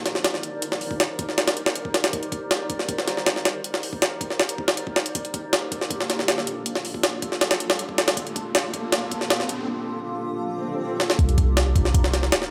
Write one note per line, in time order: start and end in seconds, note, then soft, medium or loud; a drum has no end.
0.00 0.13 D#4 loud
0.00 0.13 G4 medium
0.00 0.13 A#4 medium
0.00 0.13 C5 medium
0.00 0.13 D5 loud
0.06 snare medium
0.06 closed hi-hat medium
0.15 snare soft
0.24 snare loud
0.24 closed hi-hat medium
0.34 snare soft
0.43 closed hi-hat medium
0.62 1.64 D#4 loud
0.62 1.64 G4 medium
0.62 1.64 A#4 medium
0.62 1.64 C5 medium
0.62 1.64 D5 loud
0.62 closed hi-hat medium
0.72 snare medium
0.81 open hi-hat medium
0.91 kick medium
1.00 snare loud
1.00 closed hi-hat medium
1.19 kick medium
1.19 closed hi-hat medium
1.29 snare soft
1.38 snare loud
1.38 closed hi-hat medium
1.48 snare loud
1.48 closed hi-hat medium
1.57 closed hi-hat medium
1.66 snare loud
1.75 closed hi-hat medium
1.85 kick medium
1.94 snare loud
1.94 closed hi-hat medium
2.04 snare loud
2.04 closed hi-hat medium
2.13 3.15 D#4 loud
2.13 3.15 G4 medium
2.13 3.15 A#4 medium
2.13 3.15 C5 medium
2.13 3.15 D5 loud
2.13 kick loud
2.13 closed hi-hat medium
2.23 closed hi-hat soft
2.32 kick medium
2.32 closed hi-hat medium
2.51 snare loud
2.51 closed hi-hat medium
2.70 kick medium
2.70 closed hi-hat medium
2.79 snare soft
2.89 kick loud
2.89 closed hi-hat medium
2.98 snare medium
3.08 snare medium
3.08 closed hi-hat medium
3.17 snare soft
3.26 snare loud
3.26 closed hi-hat medium
3.36 snare soft
3.45 snare loud
3.45 closed hi-hat medium
3.64 closed hi-hat medium
3.74 snare soft
3.83 open hi-hat medium
3.93 kick medium
4.02 snare loud
4.02 closed hi-hat medium
4.21 kick medium
4.21 closed hi-hat medium
4.30 snare soft
4.40 snare loud
4.49 closed hi-hat medium
4.58 kick medium
4.68 snare loud
4.77 closed hi-hat medium
4.87 kick medium
4.96 snare loud
5.06 closed hi-hat medium
5.15 6.17 A#3 loud
5.15 6.17 D4 medium
5.15 6.17 F4 medium
5.15 6.17 G4 medium
5.15 6.17 A4 loud
5.15 kick loud
5.15 closed hi-hat medium
5.15 riser medium
5.25 closed hi-hat soft
5.34 kick medium
5.34 closed hi-hat medium
5.53 snare loud
5.53 closed hi-hat medium
5.72 kick loud
5.72 closed hi-hat medium
5.81 snare soft
5.91 kick loud
5.91 closed hi-hat medium
6.00 snare medium
6.10 snare medium
6.10 closed hi-hat medium
6.19 snare soft
6.28 snare loud
6.28 closed hi-hat medium
6.38 snare soft
6.47 closed hi-hat medium
6.66 7.68 A#3 loud
6.66 7.68 D4 medium
6.66 7.68 F4 medium
6.66 7.68 G4 medium
6.66 7.68 A4 loud
6.66 closed hi-hat medium
6.75 snare medium
6.85 open hi-hat medium
6.94 kick medium
7.03 snare loud
7.03 closed hi-hat medium
7.22 kick loud
7.22 closed hi-hat medium
7.32 snare soft
7.41 snare loud
7.41 closed hi-hat medium
7.51 snare loud
7.51 closed hi-hat medium
7.60 closed hi-hat medium
7.70 snare loud
7.79 closed hi-hat medium
7.89 kick medium
7.98 snare loud
7.98 closed hi-hat medium
8.08 snare loud
8.08 closed hi-hat medium
8.17 9.19 A#3 loud
8.17 9.19 D4 medium
8.17 9.19 F4 medium
8.17 9.19 G4 medium
8.17 9.19 A4 loud
8.17 kick loud
8.17 closed hi-hat medium
8.27 closed hi-hat soft
8.36 kick medium
8.36 closed hi-hat medium
8.55 snare loud
8.55 closed hi-hat loud
8.74 kick medium
8.74 closed hi-hat medium
8.92 snare loud
8.92 closed hi-hat medium
9.11 kick medium
9.11 closed hi-hat medium
9.21 snare soft
9.30 snare loud
9.30 closed hi-hat medium
9.40 snare soft
9.49 closed hi-hat medium
10.43 swell medium
11.00 snare medium
11.10 snare medium
11.19 12.31 C2 loud
11.19 12.21 D#4 loud
11.19 12.21 G4 medium
11.19 12.21 A#4 medium
11.19 12.21 C5 medium
11.19 12.21 D5 loud
11.19 kick loud
11.19 closed hi-hat medium
11.19 sub drop medium
11.29 closed hi-hat soft
11.38 kick loud
11.38 closed hi-hat medium
11.57 snare loud
11.57 closed hi-hat medium
11.76 kick loud
11.76 closed hi-hat medium
11.85 snare soft
11.94 kick loud
11.94 closed hi-hat medium
12.04 snare medium
12.14 snare medium
12.14 closed hi-hat medium
12.23 snare soft
12.32 snare loud
12.32 closed hi-hat medium
12.42 snare soft